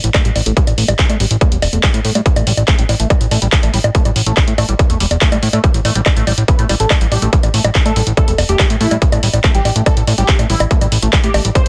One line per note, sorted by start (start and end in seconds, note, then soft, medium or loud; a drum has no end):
0.04 0.10 A1 medium
0.04 closed hi-hat medium
0.14 0.23 A3 medium
0.14 kick loud
0.14 clap loud
0.14 closed hi-hat medium
0.14 high bongo medium
0.25 0.31 A1 medium
0.25 0.31 G3 medium
0.25 closed hi-hat medium
0.36 0.42 A1 loud
0.36 open hi-hat medium
0.36 high bongo soft
0.46 0.52 A1 medium
0.46 0.55 A3 medium
0.46 closed hi-hat medium
0.57 0.62 G3 medium
0.57 kick loud
0.57 closed hi-hat medium
0.67 0.73 A1 medium
0.67 closed hi-hat medium
0.67 high bongo soft
0.78 0.84 A1 medium
0.78 0.86 A3 medium
0.78 open hi-hat loud
0.88 0.94 A1 loud
0.88 0.94 G3 medium
0.88 closed hi-hat medium
0.88 high bongo medium
0.99 kick loud
0.99 clap loud
0.99 closed hi-hat medium
1.09 1.15 A2 medium
1.09 1.18 A3 medium
1.09 closed hi-hat medium
1.09 high bongo soft
1.20 1.26 A1 loud
1.20 1.26 G3 medium
1.20 open hi-hat loud
1.31 1.37 A1 medium
1.31 closed hi-hat medium
1.41 1.50 A3 medium
1.41 kick loud
1.41 closed hi-hat medium
1.41 high bongo soft
1.52 1.58 E1 medium
1.52 1.57 G3 medium
1.52 closed hi-hat medium
1.62 1.68 E1 loud
1.62 open hi-hat loud
1.62 high bongo medium
1.73 1.79 E1 medium
1.73 1.81 A3 medium
1.73 closed hi-hat medium
1.83 1.89 G3 medium
1.83 kick loud
1.83 clap loud
1.83 closed hi-hat medium
1.83 high bongo soft
1.94 2.00 A2 medium
1.94 closed hi-hat medium
2.05 2.11 A2 loud
2.05 2.13 A3 medium
2.05 open hi-hat medium
2.15 2.21 A2 medium
2.15 2.21 G3 medium
2.15 closed hi-hat medium
2.15 high bongo soft
2.26 kick loud
2.26 closed hi-hat medium
2.36 2.42 A1 medium
2.36 2.45 A3 medium
2.36 closed hi-hat medium
2.36 high bongo medium
2.47 2.53 A1 medium
2.47 2.52 G3 medium
2.47 open hi-hat loud
2.57 2.63 A1 loud
2.57 closed hi-hat medium
2.57 high bongo soft
2.68 2.76 A3 medium
2.68 kick loud
2.68 clap loud
2.68 closed hi-hat medium
2.79 2.85 A1 medium
2.79 2.84 G3 medium
2.79 closed hi-hat medium
2.89 2.95 A1 loud
2.89 open hi-hat loud
2.89 high bongo soft
3.00 3.06 A1 medium
3.00 3.08 A3 medium
3.00 closed hi-hat medium
3.10 3.16 G3 medium
3.10 kick loud
3.10 closed hi-hat medium
3.10 high bongo medium
3.21 3.27 A1 medium
3.21 closed hi-hat medium
3.31 3.37 A1 loud
3.31 3.40 A3 medium
3.31 open hi-hat loud
3.31 high bongo soft
3.42 3.48 A1 medium
3.42 3.47 G3 medium
3.42 closed hi-hat medium
3.52 kick loud
3.52 clap loud
3.52 closed hi-hat medium
3.63 3.69 A1 medium
3.63 3.71 A3 medium
3.63 closed hi-hat medium
3.63 high bongo soft
3.74 3.80 A1 loud
3.74 3.79 G3 medium
3.74 open hi-hat loud
3.84 3.90 A1 medium
3.84 closed hi-hat medium
3.84 high bongo medium
3.95 4.03 A3 medium
3.95 kick loud
3.95 closed hi-hat medium
4.05 4.11 A1 medium
4.05 4.11 G3 medium
4.05 closed hi-hat medium
4.05 high bongo soft
4.16 4.22 A1 loud
4.16 open hi-hat loud
4.26 4.32 A1 medium
4.26 4.35 A3 medium
4.26 closed hi-hat medium
4.37 4.43 G3 medium
4.37 kick loud
4.37 clap loud
4.37 closed hi-hat medium
4.37 high bongo soft
4.48 4.53 A2 medium
4.48 closed hi-hat medium
4.58 4.64 A1 loud
4.58 4.66 A3 medium
4.58 open hi-hat loud
4.58 high bongo medium
4.69 4.75 A1 medium
4.69 4.74 G3 medium
4.69 closed hi-hat medium
4.79 kick loud
4.79 closed hi-hat medium
4.79 high bongo soft
4.90 4.96 E1 medium
4.90 4.98 A3 medium
4.90 closed hi-hat medium
5.00 5.06 E1 loud
5.00 5.06 G3 medium
5.00 open hi-hat loud
5.11 5.17 E1 medium
5.11 closed hi-hat medium
5.11 high bongo soft
5.21 5.30 A3 medium
5.21 kick loud
5.21 clap loud
5.21 closed hi-hat medium
5.32 5.38 A2 medium
5.32 5.38 G3 medium
5.32 closed hi-hat medium
5.32 high bongo medium
5.43 5.49 A2 loud
5.43 open hi-hat medium
5.53 5.59 A2 medium
5.53 5.62 A3 medium
5.53 closed hi-hat medium
5.53 high bongo soft
5.64 5.69 G3 medium
5.64 kick loud
5.64 closed hi-hat medium
5.74 5.80 A1 medium
5.74 closed hi-hat medium
5.85 5.91 A1 medium
5.85 5.93 A3 medium
5.85 open hi-hat loud
5.85 high bongo soft
5.95 6.01 A1 medium
5.95 6.01 G3 medium
5.95 closed hi-hat medium
6.06 kick loud
6.06 clap loud
6.06 closed hi-hat medium
6.06 high bongo medium
6.17 6.23 A1 medium
6.17 6.25 A3 medium
6.17 closed hi-hat medium
6.27 6.33 A1 loud
6.27 6.33 G3 medium
6.27 open hi-hat loud
6.27 high bongo soft
6.38 6.44 A1 medium
6.38 closed hi-hat medium
6.48 6.62 B4 loud
6.48 kick loud
6.48 closed hi-hat medium
6.59 6.65 A1 medium
6.59 6.67 A3 medium
6.59 closed hi-hat medium
6.69 6.75 A1 loud
6.69 6.75 G3 medium
6.69 open hi-hat loud
6.69 high bongo soft
6.80 6.86 A1 medium
6.80 6.94 A4 loud
6.80 closed hi-hat medium
6.90 6.99 A3 medium
6.90 kick loud
6.90 clap loud
6.90 closed hi-hat medium
6.90 high bongo medium
7.01 7.07 A1 medium
7.01 7.07 G3 medium
7.01 closed hi-hat medium
7.12 7.18 A1 loud
7.12 7.26 G4 medium
7.12 open hi-hat medium
7.12 high bongo soft
7.22 7.28 A1 medium
7.22 7.31 A3 medium
7.22 closed hi-hat medium
7.33 7.38 G3 medium
7.33 kick loud
7.33 closed hi-hat medium
7.43 7.49 A1 medium
7.43 closed hi-hat medium
7.43 high bongo soft
7.54 7.60 A1 loud
7.54 7.62 A3 medium
7.54 open hi-hat loud
7.64 7.70 A1 loud
7.64 7.70 G3 medium
7.64 closed hi-hat medium
7.64 high bongo medium
7.75 kick loud
7.75 clap loud
7.75 closed hi-hat medium
7.86 7.92 A2 medium
7.86 7.94 A3 medium
7.86 8.00 A4 loud
7.86 closed hi-hat medium
7.86 high bongo soft
7.96 8.02 A1 loud
7.96 8.02 G3 medium
7.96 open hi-hat loud
8.07 8.13 A1 medium
8.07 closed hi-hat medium
8.17 8.26 A3 medium
8.17 8.31 A4 loud
8.17 kick loud
8.17 closed hi-hat medium
8.17 high bongo soft
8.28 8.34 E1 medium
8.28 8.33 G3 medium
8.28 closed hi-hat medium
8.38 8.44 E1 loud
8.38 open hi-hat loud
8.38 high bongo medium
8.49 8.55 E1 loud
8.49 8.57 A3 medium
8.49 8.63 G4 loud
8.49 closed hi-hat medium
8.59 8.65 G3 medium
8.59 kick loud
8.59 clap loud
8.59 closed hi-hat medium
8.59 high bongo soft
8.70 8.76 A2 medium
8.70 closed hi-hat medium
8.81 8.87 A2 loud
8.81 8.89 A3 medium
8.81 8.95 E4 medium
8.81 open hi-hat medium
8.91 8.97 A2 medium
8.91 8.97 G3 medium
8.91 closed hi-hat medium
8.91 high bongo soft
9.02 kick loud
9.02 closed hi-hat medium
9.12 9.18 A1 medium
9.12 9.21 A3 medium
9.12 closed hi-hat medium
9.12 high bongo medium
9.23 9.29 A1 medium
9.23 9.28 G3 medium
9.23 open hi-hat loud
9.33 9.39 A1 loud
9.33 closed hi-hat medium
9.33 high bongo soft
9.44 9.52 A3 medium
9.44 kick loud
9.44 clap loud
9.44 closed hi-hat medium
9.55 9.61 A1 medium
9.55 9.60 G3 medium
9.55 9.69 G4 loud
9.55 closed hi-hat medium
9.65 9.71 A1 loud
9.65 open hi-hat medium
9.65 high bongo soft
9.76 9.82 A1 medium
9.76 9.84 A3 medium
9.76 closed hi-hat medium
9.86 9.92 G3 medium
9.86 10.00 A4 loud
9.86 kick loud
9.86 closed hi-hat medium
9.86 high bongo medium
9.97 10.03 A1 medium
9.97 closed hi-hat medium
10.07 10.13 A1 loud
10.07 10.16 A3 medium
10.07 open hi-hat medium
10.07 high bongo soft
10.18 10.24 A1 medium
10.18 10.24 G3 medium
10.18 10.32 G4 medium
10.18 closed hi-hat medium
10.29 kick loud
10.29 clap loud
10.29 closed hi-hat medium
10.39 10.45 A1 medium
10.39 10.47 A3 medium
10.39 closed hi-hat medium
10.39 high bongo soft
10.50 10.56 A1 loud
10.50 10.55 G3 medium
10.50 10.64 E4 loud
10.50 open hi-hat medium
10.60 10.66 A1 medium
10.60 closed hi-hat medium
10.60 high bongo medium
10.71 10.79 A3 medium
10.71 kick loud
10.71 closed hi-hat medium
10.81 10.87 A1 medium
10.81 10.87 G3 medium
10.81 closed hi-hat medium
10.81 high bongo soft
10.92 10.98 A1 loud
10.92 open hi-hat loud
11.02 11.08 A1 medium
11.02 11.11 A3 medium
11.02 closed hi-hat medium
11.13 11.19 G3 medium
11.13 kick loud
11.13 clap loud
11.13 closed hi-hat medium
11.13 high bongo soft
11.24 11.30 A2 medium
11.24 11.38 G4 loud
11.24 closed hi-hat medium
11.34 11.40 A1 loud
11.34 11.43 A3 medium
11.34 open hi-hat loud
11.34 high bongo medium
11.45 11.51 A1 medium
11.45 11.50 G3 medium
11.45 closed hi-hat medium
11.55 11.68 C5 loud
11.55 kick loud
11.55 closed hi-hat medium
11.55 high bongo soft